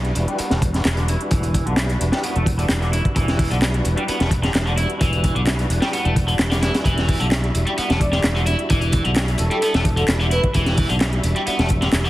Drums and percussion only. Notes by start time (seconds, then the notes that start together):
0.05 closed hi-hat
0.15 closed hi-hat
0.28 closed hi-hat
0.39 closed hi-hat
0.51 snare, closed hi-hat
0.62 kick, closed hi-hat
0.74 snare, closed hi-hat
0.85 snare, clap, closed hi-hat
0.97 closed hi-hat
1.08 closed hi-hat
1.21 closed hi-hat
1.31 kick, closed hi-hat
1.43 closed hi-hat
1.54 kick, closed hi-hat
1.67 closed hi-hat
1.77 snare, clap, closed hi-hat
1.89 closed hi-hat
2.01 closed hi-hat
2.12 snare, closed hi-hat
2.24 closed hi-hat
2.36 closed hi-hat
2.46 kick, closed hi-hat
2.59 closed hi-hat
2.69 snare, clap, closed hi-hat
2.82 closed hi-hat
2.93 closed hi-hat
3.05 kick, closed hi-hat
3.16 kick, closed hi-hat
3.28 snare, closed hi-hat
3.39 kick, closed hi-hat, open hi-hat
3.51 closed hi-hat
3.62 snare, clap, closed hi-hat
3.74 closed hi-hat
3.85 closed hi-hat
3.98 closed hi-hat
4.08 closed hi-hat
4.20 snare, closed hi-hat
4.31 kick, closed hi-hat
4.43 snare, closed hi-hat
4.55 snare, clap, closed hi-hat
4.67 closed hi-hat
4.78 closed hi-hat
4.90 closed hi-hat
5.01 kick, closed hi-hat
5.13 closed hi-hat
5.24 kick, closed hi-hat
5.36 closed hi-hat
5.47 snare, clap, closed hi-hat
5.59 closed hi-hat
5.70 closed hi-hat
5.82 snare, closed hi-hat
5.93 closed hi-hat
6.05 closed hi-hat
6.16 kick, closed hi-hat
6.28 closed hi-hat
6.39 snare, clap, closed hi-hat
6.51 snare, closed hi-hat
6.63 snare, closed hi-hat
6.74 snare, closed hi-hat
6.85 kick, closed hi-hat
6.98 snare, closed hi-hat
7.08 kick, closed hi-hat, open hi-hat
7.21 closed hi-hat
7.32 snare, clap, closed hi-hat
7.44 closed hi-hat
7.55 closed hi-hat
7.67 closed hi-hat
7.78 closed hi-hat
7.90 snare, closed hi-hat
8.01 kick, closed hi-hat
8.12 snare, closed hi-hat
8.24 snare, clap, closed hi-hat
8.36 closed hi-hat
8.46 closed hi-hat
8.59 closed hi-hat
8.70 kick, closed hi-hat
8.81 closed hi-hat
8.92 kick, closed hi-hat
9.05 closed hi-hat
9.16 snare, clap, closed hi-hat
9.28 closed hi-hat
9.38 closed hi-hat
9.51 closed hi-hat
9.62 closed hi-hat
9.74 snare, closed hi-hat
9.85 kick, closed hi-hat
9.97 closed hi-hat
10.08 snare, clap, closed hi-hat
10.20 closed hi-hat
10.31 closed hi-hat
10.44 kick, closed hi-hat
10.54 kick, closed hi-hat
10.66 snare, closed hi-hat
10.77 kick, closed hi-hat, open hi-hat
10.90 closed hi-hat
11.01 snare, clap, closed hi-hat
11.13 closed hi-hat
11.23 closed hi-hat
11.36 closed hi-hat
11.47 closed hi-hat
11.59 snare, closed hi-hat
11.69 kick, closed hi-hat
11.82 snare, closed hi-hat
11.92 snare, clap, closed hi-hat
12.05 closed hi-hat